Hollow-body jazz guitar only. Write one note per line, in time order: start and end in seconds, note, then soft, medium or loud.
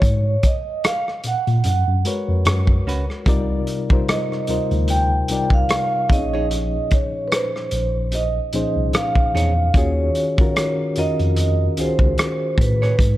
2.87 3.04 C#4 medium
2.87 3.04 F#4 medium
2.87 3.05 B4 medium
6.33 6.47 D#4 soft
6.33 6.47 G#4 medium
6.33 6.47 C#5 medium
9.35 9.52 D#4 medium
9.35 9.52 G#4 medium
9.35 9.53 C#5 medium
12.82 12.96 F#4 soft
12.82 12.96 G#4 medium
12.82 12.95 C#5 medium